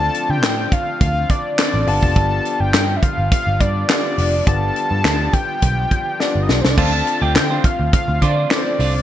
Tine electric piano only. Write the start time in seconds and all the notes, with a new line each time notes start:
Already playing: C4 D4 F4 A4 D5
1.58 C4 D4 F4 A4 D5
1.87 B3 D4 F4 G4 D5
3.89 B3 D4 F4 G4 D5
4.47 B3 D4 F4 G4 D5
6.20 B3 D4 F4 G4 D5
6.77 C4 D4 F4 A4 D5
8.51 C4 D4 F4 A4 B4
8.58 C5